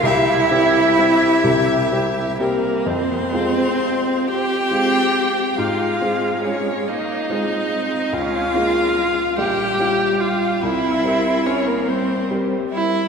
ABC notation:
X:1
M:6/8
L:1/16
Q:3/8=47
K:Fm
V:1 name="Violin"
=e8- e2 B2 | c6 g6 | f4 d2 e6 | f6 g4 f2 |
=e4 d B c2 z2 e2 |]
V:2 name="Viola"
G8- G2 B,2 | C6 G6 | F4 D2 E6 | F6 G4 F2 |
=E4 D B, C2 z2 E2 |]
V:3 name="Grand piano"
[C,,C,]2 [G,CG]2 [G,CG]2 [C,,C,]2 [G,CG]2 [G,CG]2 | F,,2 [A,CF]6 [A,CF]4 | A,,2 [A,CF]6 [A,CF]4 | D,,2 [A,DF]4 B,,,2 [G,DF]4 |
C,,2 [G,CB]6 [G,CB]4 |]
V:4 name="Cello"
=E8- E2 z2 | z6 C6 | A,6 B,2 A,2 C2 | D2 B,2 A,2 G,6 |
C6 G,6 |]